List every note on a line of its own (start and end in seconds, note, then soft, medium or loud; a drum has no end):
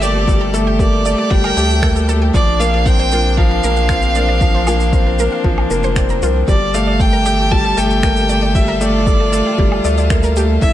0.00 1.15 G1 medium
0.00 0.28 G3 medium
0.00 0.02 A3 loud
0.00 0.17 A3 medium
0.00 0.79 A#3 medium
0.00 2.31 G4 loud
0.00 0.11 G4 loud
0.00 2.31 A4 medium
0.00 0.54 D5 medium
0.00 shaker medium
0.28 0.52 G3 medium
0.28 0.33 A4 medium
0.28 kick loud
0.28 shaker soft
0.41 0.50 A4 medium
0.54 0.78 A3 loud
0.54 0.59 A4 loud
0.54 shaker medium
0.67 0.79 G5 medium
0.79 1.04 A#3 medium
0.79 0.88 G4 medium
0.79 1.32 D5 medium
0.79 kick loud
0.79 shaker soft
1.05 1.30 A3 medium
1.05 1.11 D5 loud
1.05 shaker medium
1.18 1.27 D5 medium
1.31 1.52 G1 medium
1.31 1.56 G3 loud
1.31 2.09 G5 loud
1.31 kick loud
1.44 1.53 A#4 loud
1.44 low woodblock medium
1.57 2.31 D2 medium
1.57 1.72 A3 loud
1.57 1.66 G4 loud
1.57 shaker medium
1.70 shaker soft
1.82 2.07 A#3 medium
1.82 1.88 A4 medium
1.82 finger snap medium
1.82 kick medium
1.82 shaker soft
1.96 2.05 A4 medium
1.96 shaker soft
2.09 2.23 A3 medium
2.09 2.14 A4 loud
2.09 shaker medium
2.22 2.34 G5 medium
2.34 3.60 A#1 loud
2.34 2.59 F3 medium
2.34 6.45 C4 medium
2.34 6.45 D4 medium
2.34 2.43 F4 medium
2.34 2.62 D5 loud
2.34 kick loud
2.34 shaker soft
2.60 2.85 A#3 loud
2.60 2.66 D5 loud
2.60 2.88 F5 loud
2.60 shaker medium
2.74 2.82 D5 medium
2.86 3.11 C4 medium
2.86 3.39 G5 loud
2.86 kick loud
2.86 shaker soft
2.99 3.08 C5 loud
3.12 3.37 A#3 medium
3.12 3.21 F4 loud
3.12 shaker medium
3.37 3.63 F3 loud
3.37 3.43 A#4 medium
3.37 5.96 F5 loud
3.37 kick medium
3.51 3.60 A#4 medium
3.63 5.28 A#1 loud
3.63 3.79 A#3 loud
3.63 3.69 A#4 loud
3.63 shaker medium
3.76 3.89 F5 medium
3.76 shaker soft
3.89 4.15 C4 medium
3.89 3.99 F4 medium
3.89 finger snap medium
3.89 kick loud
3.89 shaker soft
4.02 shaker soft
4.15 4.31 A#3 medium
4.15 4.21 D5 loud
4.15 shaker medium
4.28 4.37 D5 medium
4.41 4.66 F3 medium
4.41 kick loud
4.41 shaker soft
4.55 4.63 C5 loud
4.67 4.92 A#3 loud
4.67 4.76 F4 medium
4.67 low woodblock medium
4.67 shaker medium
4.80 shaker soft
4.93 5.18 C4 medium
4.93 4.99 A#4 medium
4.93 kick loud
4.93 shaker soft
5.07 5.15 A#4 medium
5.19 5.44 A#3 medium
5.19 5.25 A#4 loud
5.19 shaker medium
5.32 5.44 F5 medium
5.44 5.66 A#1 loud
5.44 5.69 F3 loud
5.44 5.54 F4 medium
5.44 kick medium
5.58 low woodblock medium
5.70 6.21 F1 medium
5.70 5.85 A#3 loud
5.70 5.76 A#4 medium
5.70 shaker medium
5.83 5.89 C5 loud
5.83 shaker soft
5.96 6.21 C4 medium
5.96 6.02 D5 loud
5.96 finger snap medium
5.96 kick loud
5.96 shaker soft
6.09 6.15 A#5 loud
6.09 shaker soft
6.22 6.44 C2 loud
6.22 6.37 A#3 medium
6.22 6.32 F4 loud
6.22 shaker medium
6.48 7.74 G1 loud
6.48 6.73 G3 medium
6.48 6.57 G4 medium
6.48 8.53 G4 medium
6.48 10.58 A4 medium
6.48 6.76 D5 loud
6.48 kick loud
6.48 shaker soft
6.74 6.99 A3 loud
6.74 6.80 D5 medium
6.74 7.02 F5 loud
6.74 shaker medium
6.87 6.96 D5 medium
7.00 7.24 A3 medium
7.00 7.53 G5 loud
7.00 kick loud
7.00 shaker soft
7.13 7.22 A#4 loud
7.26 7.50 A3 medium
7.26 7.35 G4 loud
7.26 shaker medium
7.51 7.76 G3 loud
7.51 7.57 A4 medium
7.51 7.79 A5 loud
7.51 kick medium
7.64 7.73 A4 medium
7.77 9.42 G1 loud
7.77 7.92 A3 loud
7.77 7.83 A4 loud
7.77 8.57 G5 loud
7.77 shaker medium
7.90 8.03 G5 medium
7.90 shaker soft
8.03 8.28 A#3 medium
8.03 8.12 G4 medium
8.03 finger snap medium
8.03 kick loud
8.03 shaker soft
8.17 shaker soft
8.29 8.44 A3 medium
8.29 8.35 D5 loud
8.29 shaker medium
8.42 8.51 D5 medium
8.55 8.80 G3 medium
8.55 10.61 F4 medium
8.55 8.83 E5 loud
8.55 kick loud
8.55 shaker soft
8.68 8.77 A#4 loud
8.81 9.05 A3 loud
8.81 8.90 G4 medium
8.81 9.85 D5 loud
8.81 shaker medium
9.07 9.31 A3 medium
9.07 9.12 A4 medium
9.07 kick loud
9.07 shaker soft
9.20 9.29 A4 medium
9.33 9.57 A3 medium
9.33 9.38 A4 loud
9.33 shaker medium
9.46 9.58 G5 medium
9.58 9.80 G1 medium
9.58 9.83 G3 loud
9.58 9.68 G4 medium
9.58 kick loud
9.72 low woodblock medium
9.84 10.59 D2 medium
9.84 9.99 A3 medium
9.84 9.90 D5 loud
9.84 shaker medium
9.98 10.07 D5 medium
9.98 shaker soft
10.10 10.35 A#3 medium
10.10 finger snap medium
10.10 kick loud
10.10 shaker soft
10.23 10.32 A#4 loud
10.23 shaker soft
10.36 10.51 A3 medium
10.36 10.45 G4 loud
10.36 shaker medium
10.62 10.73 A1 loud
10.62 10.73 E3 medium
10.62 10.73 A3 medium
10.62 10.73 C4 medium
10.62 10.73 E4 loud
10.62 10.68 A4 medium
10.62 10.73 E5 loud
10.62 kick loud
10.62 shaker soft